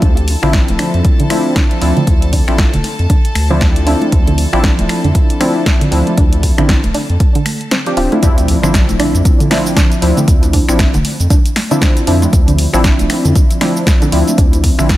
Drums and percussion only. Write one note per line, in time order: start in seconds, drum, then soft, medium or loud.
0.02 kick loud
0.02 closed hi-hat medium
0.17 closed hi-hat soft
0.28 open hi-hat loud
0.43 finger snap medium
0.53 kick loud
0.53 snare loud
0.53 closed hi-hat medium
0.68 closed hi-hat soft
0.68 high conga medium
0.79 finger snap medium
0.79 open hi-hat medium
0.79 high bongo soft
0.94 closed hi-hat soft
1.05 kick loud
1.05 closed hi-hat medium
1.20 closed hi-hat soft
1.30 finger snap medium
1.30 open hi-hat loud
1.30 high conga medium
1.56 kick loud
1.56 snare loud
1.56 closed hi-hat medium
1.71 closed hi-hat soft
1.82 open hi-hat medium
1.97 closed hi-hat soft
1.97 high conga medium
2.07 kick loud
2.07 closed hi-hat medium
2.22 closed hi-hat medium
2.33 kick medium
2.33 open hi-hat medium
2.48 finger snap medium
2.58 kick loud
2.58 snare loud
2.58 closed hi-hat medium
2.73 closed hi-hat medium
2.73 high conga medium
2.84 open hi-hat medium
2.84 high bongo medium
2.99 closed hi-hat soft
3.10 kick loud
3.10 closed hi-hat medium
3.25 closed hi-hat soft
3.35 finger snap medium
3.35 open hi-hat loud
3.35 high conga medium
3.61 kick loud
3.61 snare loud
3.61 closed hi-hat medium
3.76 closed hi-hat medium
3.87 open hi-hat medium
4.01 closed hi-hat soft
4.01 high bongo medium
4.01 high conga medium
4.12 kick loud
4.12 closed hi-hat medium
4.27 closed hi-hat medium
4.38 open hi-hat medium
4.53 finger snap medium
4.64 kick loud
4.64 snare loud
4.64 closed hi-hat medium
4.79 closed hi-hat medium
4.79 high conga medium
4.89 finger snap medium
4.89 open hi-hat medium
4.89 high bongo soft
5.04 closed hi-hat soft
5.15 kick loud
5.15 closed hi-hat medium
5.30 closed hi-hat medium
5.41 finger snap medium
5.41 open hi-hat loud
5.41 high conga medium
5.66 kick loud
5.66 snare loud
5.66 closed hi-hat medium
5.81 closed hi-hat medium
5.92 open hi-hat medium
6.07 closed hi-hat soft
6.07 high conga medium
6.18 kick loud
6.18 closed hi-hat medium
6.33 closed hi-hat medium
6.43 kick medium
6.43 open hi-hat loud
6.58 finger snap medium
6.58 closed hi-hat soft
6.58 low conga medium
6.69 kick loud
6.69 snare loud
6.69 closed hi-hat medium
6.83 closed hi-hat medium
6.83 high conga medium
6.94 open hi-hat medium
6.94 high bongo medium
7.10 closed hi-hat soft
7.20 kick loud
7.20 closed hi-hat medium
7.35 closed hi-hat medium
7.46 finger snap medium
7.46 open hi-hat loud
7.46 high conga medium
7.61 closed hi-hat soft
7.71 snare loud
7.71 closed hi-hat medium
7.86 closed hi-hat medium
7.97 open hi-hat medium
8.12 closed hi-hat soft
8.12 high bongo medium
8.12 high conga medium
8.23 kick loud
8.23 closed hi-hat medium
8.23 high bongo medium
8.23 cabasa medium
8.38 closed hi-hat medium
8.38 cabasa soft
8.48 open hi-hat loud
8.63 finger snap medium
8.63 high bongo medium
8.63 cabasa medium
8.74 kick loud
8.74 snare loud
8.74 closed hi-hat medium
8.74 cabasa medium
8.89 closed hi-hat medium
8.89 high conga medium
8.89 cabasa soft
9.00 finger snap medium
9.00 open hi-hat loud
9.15 closed hi-hat soft
9.15 high bongo medium
9.15 cabasa medium
9.25 kick loud
9.25 closed hi-hat medium
9.25 cabasa medium
9.40 closed hi-hat medium
9.40 cabasa soft
9.51 finger snap medium
9.51 snare medium
9.51 open hi-hat loud
9.51 high bongo medium
9.51 high conga medium
9.66 cabasa medium
9.77 kick loud
9.77 snare loud
9.77 closed hi-hat medium
9.77 cabasa medium
9.92 closed hi-hat medium
9.92 cabasa soft
10.02 open hi-hat loud
10.02 high bongo medium
10.17 closed hi-hat soft
10.17 high conga medium
10.17 cabasa medium
10.28 kick loud
10.28 closed hi-hat medium
10.28 cabasa medium
10.43 closed hi-hat medium
10.43 high bongo medium
10.43 cabasa soft
10.53 kick medium
10.53 open hi-hat loud
10.69 finger snap medium
10.69 cabasa medium
10.79 kick loud
10.79 snare loud
10.79 closed hi-hat medium
10.79 cabasa medium
10.94 closed hi-hat medium
10.94 high bongo medium
10.94 high conga medium
10.94 cabasa soft
11.05 open hi-hat loud
11.20 closed hi-hat soft
11.20 cabasa medium
11.30 kick loud
11.30 closed hi-hat medium
11.30 high bongo medium
11.30 cabasa medium
11.46 closed hi-hat medium
11.46 cabasa soft
11.56 finger snap medium
11.56 snare medium
11.56 open hi-hat loud
11.56 high conga medium
11.71 closed hi-hat soft
11.71 cabasa medium
11.82 kick loud
11.82 snare loud
11.82 closed hi-hat medium
11.82 high bongo soft
11.82 cabasa medium
11.97 closed hi-hat medium
11.97 cabasa soft
12.07 open hi-hat loud
12.22 closed hi-hat soft
12.22 high bongo medium
12.22 high conga medium
12.22 cabasa medium
12.33 kick loud
12.33 closed hi-hat medium
12.33 cabasa medium
12.48 closed hi-hat medium
12.48 cabasa soft
12.58 open hi-hat loud
12.73 finger snap medium
12.73 high bongo soft
12.73 cabasa medium
12.84 kick loud
12.84 snare loud
12.84 closed hi-hat medium
12.84 cabasa medium
12.99 closed hi-hat medium
12.99 high conga medium
12.99 cabasa soft
13.10 finger snap medium
13.10 open hi-hat loud
13.10 high bongo medium
13.25 closed hi-hat soft
13.25 cabasa medium
13.35 kick loud
13.35 closed hi-hat medium
13.35 cabasa medium
13.51 closed hi-hat medium
13.51 cabasa soft
13.61 finger snap medium
13.61 snare medium
13.61 open hi-hat loud
13.61 high bongo soft
13.61 high conga medium
13.77 cabasa medium
13.87 kick loud
13.87 snare loud
13.87 closed hi-hat medium
13.87 cabasa medium
14.02 closed hi-hat medium
14.02 high bongo medium
14.02 cabasa soft
14.12 open hi-hat loud
14.28 closed hi-hat soft
14.28 high conga medium
14.28 cabasa medium
14.38 kick loud
14.38 closed hi-hat medium
14.38 cabasa medium
14.53 closed hi-hat soft
14.53 high bongo soft
14.53 cabasa soft
14.64 kick medium
14.64 open hi-hat loud
14.79 finger snap medium
14.79 cabasa medium
14.89 kick loud
14.89 snare loud
14.89 closed hi-hat medium
14.89 high bongo medium
14.89 cabasa medium